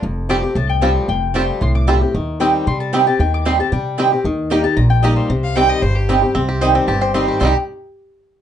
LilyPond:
<<
  \new Staff \with { instrumentName = "Mandolin" } { \time 4/4 \key c \dorian \tempo 4 = 228 r4 d'''4 a''8 g''4. | g''4 g''4 c'''8 d'''4 r8 | r4 g''4 c'''8 a''8 g''8 a''8 | g''8 d'''8 c'''8 a''8 g''4. r8 |
r4 g''8 a''8 bes''8 g''8 ees''8 c''8~ | c''2. r4 | r4 ees''8 g''8 a''8 g''8 c'''8. r16 | c'''8 r2. r8 | }
  \new Staff \with { instrumentName = "Fiddle" } { \time 4/4 \key c \dorian r1 | r1 | r1 | r1 |
r1 | r8 f''8 g''8 ees''8 c''8 g'4. | r1 | g'8 r2. r8 | }
  \new Staff \with { instrumentName = "Mandolin" } { \time 4/4 \key c \dorian r4 <a f' c'' g''>8 r4. <a f' c'' g''>8 r8 | r4 <a f' c'' g''>8 r4. <a f' c'' g''>8 r8 | r4 <c' g' ees'' g''>8 r4. <c' g' ees'' g''>8 r8 | r4 <c' g' ees'' g''>8 r4. <c' g' ees'' g''>8 r8 |
r4 <bes g' ees'' bes''>8 r4. <bes g' ees'' bes''>8 r8 | r4 <c' g' ees'' g''>8 r4. <c' g' ees'' g''>8 r8 | r4 <c' g' ees'' g''>8 r4. <c' g' ees'' g''>8 r8 | <c' g' ees'' g''>8 r2. r8 | }
  \new Staff \with { instrumentName = "Five-string banjo" } { \time 4/4 \key c \dorian r4 <c' f' g'>8 r4. <c' f' g'>8 r8 | r4 <c' f' g'>8 r4. <c' f' g'>8 r8 | r4 <c' g'>8 r4. <c' g'>8 r8 | r4 <c' g'>8 r4. <c' g'>8 r8 |
r4 <ees' g'>8 r4. <ees' g'>8 r8 | r4 <c' g'>8 r4. <c' g'>8 r8 | c'8 g'8 c''8 c'8 g'8 c''8 c'8 g'8 | <g c' ees' g'>8 r2. r8 | }
  \new Staff \with { instrumentName = "Steel-string acoustic guitar" } { \time 4/4 \key c \dorian << { r4 <f g c' g'>8 <c' g'>8 r4 <f g c' g'>4 | r4 <f g c' g'>4 r4 <f g c' g'>8 <c' g'>8 | r4 <ees g c' g'>4 r4 <ees g c' g'>8 <c' g'>8 | r4 <ees g c' g'>8 <c' g'>8 r4 <ees g c' g'>8 <c' g'>8 |
r4 <g bes ees' g'>8 <ees' g'>8 r4 <g bes ees' g'>4 | r4 <ees g c' g'>4 r4 <ees g c' g'>8 <c' g'>8 | r4 <ees g c' g'>4 r4 <ees g c' g'>4 | <c ees g c' g'>8 r2. r8 | } \\ { f,2 a,2 | f,2 a,2 | ees2 g2 | ees2 g2 |
ees2 bes,2 | c2 g,2 | c2 g,2 | r1 | } >> }
  \new Staff \with { instrumentName = "Upright bass" } { \clef bass \time 4/4 \key c \dorian f,,2 c,2 | f,,2 c,2 | ees,2 c2 | ees,2 c2 |
ees,2 bes,,2 | c,2 g,,2 | c,2 g,,2 | c,8 r2. r8 | }
>>